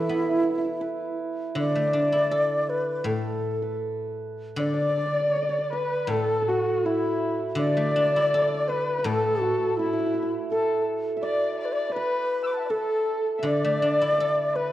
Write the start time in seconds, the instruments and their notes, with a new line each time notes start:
Already playing: guzheng E3, xiao E4, hammered dulcimer F#4 A4 B4
0.02 hammered dulcimer E4
0.08 guzheng B3, hammered dulcimer E4
0.17 hammered dulcimer E4
0.23 hammered dulcimer E4
0.31 hammered dulcimer E4
0.37 hammered dulcimer E4
0.43 hammered dulcimer E4
0.51 hammered dulcimer E4
0.58 hammered dulcimer E4
0.65 hammered dulcimer E4
0.81 hammered dulcimer B4
1.55 guzheng D3, hammered dulcimer D5
1.60 xiao D5, hammered dulcimer D5
1.71 hammered dulcimer D5
1.75 guzheng A3, hammered dulcimer D5
1.87 hammered dulcimer D5
1.93 guzheng D4, hammered dulcimer D5
2.02 hammered dulcimer D5
2.08 hammered dulcimer D5
2.12 guzheng E4, hammered dulcimer D5
2.31 guzheng A4, hammered dulcimer D5
2.69 xiao B4
3.04 guzheng A2, hammered dulcimer A4, xiao A4
3.62 hammered dulcimer B4
4.56 guzheng D3, xiao D5, hammered dulcimer D5
4.61 erhu D5
4.67 hammered dulcimer D5
4.74 hammered dulcimer D5
4.82 hammered dulcimer D5
4.89 hammered dulcimer D5
4.98 hammered dulcimer D5
5.06 hammered dulcimer D5
5.13 hammered dulcimer D5
5.20 hammered dulcimer D5
5.28 hammered dulcimer D5
5.36 hammered dulcimer D5
5.42 hammered dulcimer D5
5.49 hammered dulcimer D5
5.58 hammered dulcimer D5
5.64 xiao D5
5.73 hammered dulcimer B4, erhu B4, xiao B4
6.07 guzheng A2, xiao A4, erhu A4
6.12 hammered dulcimer A4
6.42 hammered dulcimer A4
6.48 xiao F#4, erhu F#4, hammered dulcimer F#4
6.84 xiao E4, hammered dulcimer E4, erhu E4
7.55 guzheng D3, erhu D5, xiao D5, hammered dulcimer D5
7.67 hammered dulcimer D5
7.74 guzheng A3, hammered dulcimer D5
7.83 hammered dulcimer D5
7.91 hammered dulcimer D5
7.96 guzheng D4, hammered dulcimer D5
8.06 hammered dulcimer D5
8.12 hammered dulcimer D5
8.16 guzheng E4, hammered dulcimer D5
8.27 hammered dulcimer D5
8.34 guzheng A4, hammered dulcimer D5
8.42 hammered dulcimer D5
8.48 hammered dulcimer D5
8.54 hammered dulcimer D5
8.68 xiao B4, erhu B4, hammered dulcimer B4
8.99 hammered dulcimer B4
9.04 guzheng A2, xiao A4, erhu A4, hammered dulcimer A4
9.40 xiao F#4, hammered dulcimer F#4
9.77 xiao E4, hammered dulcimer E4, erhu E4
9.86 hammered dulcimer E4
9.93 hammered dulcimer E4
10.00 hammered dulcimer E4
10.06 hammered dulcimer E4
10.14 hammered dulcimer E4
10.23 hammered dulcimer E4
10.50 xiao A4, hammered dulcimer A4, erhu A4
11.17 hammered dulcimer E5
11.22 xiao D5, hammered dulcimer D5, erhu D5
11.60 xiao D5, erhu D5
11.65 xiao B4
11.72 xiao D5, erhu D5
11.87 xiao D5, hammered dulcimer D5
11.93 xiao B4, erhu B4, hammered dulcimer B4
12.43 erhu D6 E6
12.51 erhu A5 B5
12.57 erhu E5 F#5
12.66 erhu D5
12.70 hammered dulcimer A4, xiao A4, erhu A4
13.38 erhu E5, hammered dulcimer E5
13.43 guzheng D3, erhu D5, xiao D5, hammered dulcimer D5
13.64 guzheng A3
13.82 guzheng D4
14.01 guzheng E4
14.12 hammered dulcimer E5
14.18 guzheng A4, hammered dulcimer D5
14.55 hammered dulcimer B4, xiao B4, erhu B4